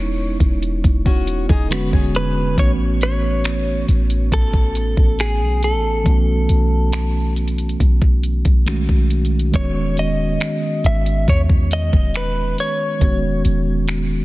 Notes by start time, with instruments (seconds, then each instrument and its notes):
Already playing: 808-style bass E1, tine electric piano G#3 B3 C#4 D#4 E4, clean electric guitar C#5
0.40 808-style bass E1, kick, closed hi-hat
0.62 closed hi-hat
0.84 808-style bass E1, kick, closed hi-hat
1.06 steel-string acoustic guitar C#4 F#4, kick
1.27 closed hi-hat
1.49 808-style bass E1, steel-string acoustic guitar D#4 G#4, kick
1.70 tine electric piano D3 G#3 B3 C#4 F#4, steel-string acoustic guitar F#4 B4, finger snap, closed hi-hat
1.93 808-style bass E1, steel-string acoustic guitar G#4 C#5, kick
2.15 clean electric guitar B4, closed hi-hat
2.55 808-style bass A1, tine electric piano E3 A3 B3, clean electric guitar C#5, kick, closed hi-hat
2.60 tine electric piano C#4 F#4
3.01 clean electric guitar C#5, closed hi-hat
3.44 finger snap, closed hi-hat
3.88 808-style bass A1, closed hi-hat
4.10 closed hi-hat
4.32 808-style bass A1, clean electric guitar A4, kick, closed hi-hat
4.53 kick
4.75 closed hi-hat
4.97 808-style bass A1, kick
5.19 clean electric guitar G#4, finger snap, closed hi-hat
5.40 808-style bass B1
5.63 clean electric guitar A4, closed hi-hat
5.73 808-style bass A1
6.03 808-style bass B1, tine electric piano E3 A3 B3, kick, closed hi-hat
6.08 tine electric piano C#4 F#4
6.49 808-style bass B1, closed hi-hat
6.92 finger snap, closed hi-hat
7.36 closed hi-hat
7.48 closed hi-hat
7.58 closed hi-hat
7.69 closed hi-hat
7.80 808-style bass B1, kick, closed hi-hat
8.02 kick
8.23 closed hi-hat
8.45 808-style bass B1, kick, closed hi-hat
8.66 tine electric piano D#3 G#3 A3 C#4 F#4, finger snap, closed hi-hat
8.89 808-style bass B1, kick
9.10 closed hi-hat
9.25 closed hi-hat
9.39 closed hi-hat
9.51 808-style bass E1, tine electric piano D#3 G#3 B3, kick, closed hi-hat
9.56 tine electric piano C#4 F#4, clean electric guitar C#5
9.97 clean electric guitar D#5, closed hi-hat
10.40 finger snap, closed hi-hat
10.84 808-style bass G#1, clean electric guitar E5, closed hi-hat
11.06 closed hi-hat
11.28 808-style bass E2, clean electric guitar C#5, kick, closed hi-hat
11.49 kick
11.71 clean electric guitar D#5, closed hi-hat
11.93 808-style bass E1, kick
12.14 clean electric guitar B4, finger snap, closed hi-hat
12.58 clean electric guitar C#5, closed hi-hat
12.99 808-style bass E1, tine electric piano D#3 G#3 B3, kick, closed hi-hat
13.04 tine electric piano C#4 F#4
13.45 808-style bass E1, closed hi-hat
13.88 finger snap, closed hi-hat